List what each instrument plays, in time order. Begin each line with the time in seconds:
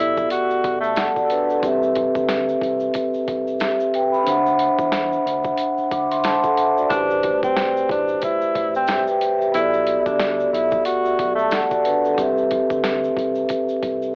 Already playing: vibraphone B3 F#4 A4 D5, tenor saxophone E4
0.00 fingered electric bass B1, closed hi-hat
0.17 kick, shaker
0.30 tenor saxophone F#4, closed hi-hat, shaker
0.50 muted fingered electric bass stroke, shaker
0.64 fingered electric bass B1, kick, closed hi-hat
0.80 tenor saxophone A3, vibraphone A5, shaker
0.96 vibraphone A4 F#5, snare, closed hi-hat, shaker
1.16 vibraphone F#4 D5, kick, shaker
1.30 vibraphone D4 B4, closed hi-hat, shaker
1.50 vibraphone A4, shaker
1.60 fingered electric bass C2, vibraphone C4 G4, kick, closed hi-hat
1.64 vibraphone B4 E5, shaker
1.82 shaker
1.95 kick, closed hi-hat
2.15 fingered electric bass D2, kick, shaker
2.28 snare, closed hi-hat, shaker
2.49 shaker
2.61 fingered electric bass C2, kick, closed hi-hat
2.80 shaker
2.94 kick, closed hi-hat, shaker
3.14 muted fingered electric bass stroke, shaker
3.28 fingered electric bass C2, kick, closed hi-hat
3.47 shaker
3.59 vibraphone G4 E5, snare, closed hi-hat, shaker
3.80 shaker
3.94 vibraphone B4 G5, closed hi-hat, shaker
4.12 vibraphone B5, shaker
4.23 fingered electric bass D2, vibraphone D4 C5, closed hi-hat
4.27 vibraphone E5 F#5, shaker
4.46 shaker
4.59 closed hi-hat
4.79 fingered electric bass E2, kick, shaker
4.92 snare, closed hi-hat, shaker
5.13 shaker
5.26 fingered electric bass D2, closed hi-hat
5.44 kick, shaker
5.58 closed hi-hat, shaker
5.78 muted fingered electric bass stroke, shaker
5.92 fingered electric bass D2, vibraphone F#5 D6, kick, closed hi-hat
6.11 vibraphone E5 C6, closed hi-hat, shaker
6.23 vibraphone C5 A5, snare, closed hi-hat, shaker
6.44 vibraphone A4 F#5, kick, shaker
6.57 vibraphone E5, closed hi-hat, shaker
6.77 vibraphone F#4 D5, shaker
6.87 fingered electric bass A1, vibraphone A3 G4, tenor saxophone D4, kick, closed hi-hat
6.91 vibraphone B4 C5, shaker
7.10 shaker
7.23 kick, closed hi-hat
7.43 fingered electric bass C2, tenor saxophone C4, kick, shaker
7.56 snare, closed hi-hat, shaker
7.77 shaker
7.89 fingered electric bass A1, tenor saxophone D4, kick, closed hi-hat
8.08 shaker
8.21 tenor saxophone E4, kick, closed hi-hat, shaker
8.41 muted fingered electric bass stroke, shaker
8.55 fingered electric bass A1, kick, closed hi-hat
8.75 tenor saxophone C4, shaker
8.87 snare, closed hi-hat, shaker
8.91 vibraphone G4 E5
9.07 vibraphone B4 G5, shaker
9.21 closed hi-hat, shaker
9.39 vibraphone G4 E5, shaker
9.52 fingered electric bass B1, vibraphone B3 F#4, tenor saxophone E4, closed hi-hat, shaker
9.56 vibraphone A4 D5
9.74 shaker
9.87 closed hi-hat
10.06 fingered electric bass D2, tenor saxophone D4, kick, shaker
10.20 snare, closed hi-hat, shaker
10.40 shaker
10.53 fingered electric bass B1, tenor saxophone E4, closed hi-hat
10.71 kick, shaker
10.85 tenor saxophone F#4, closed hi-hat, shaker
11.05 muted fingered electric bass stroke, shaker
11.19 fingered electric bass B1, kick, closed hi-hat
11.35 tenor saxophone A3, vibraphone A5, shaker
11.51 vibraphone A4 F#5, snare, closed hi-hat, shaker
11.71 vibraphone F#4 D5, kick, shaker
11.85 vibraphone D4 B4, closed hi-hat, shaker
12.05 vibraphone A4, shaker
12.14 fingered electric bass C2, vibraphone C4 G4, kick, closed hi-hat
12.19 vibraphone B4 E5, shaker
12.37 shaker
12.51 kick, closed hi-hat
12.70 fingered electric bass D2, kick, shaker
12.84 snare, closed hi-hat, shaker
13.04 shaker
13.16 fingered electric bass C2, kick, closed hi-hat
13.35 shaker
13.49 kick, closed hi-hat, shaker
13.69 muted fingered electric bass stroke, shaker
13.83 fingered electric bass C2, kick, closed hi-hat
14.02 shaker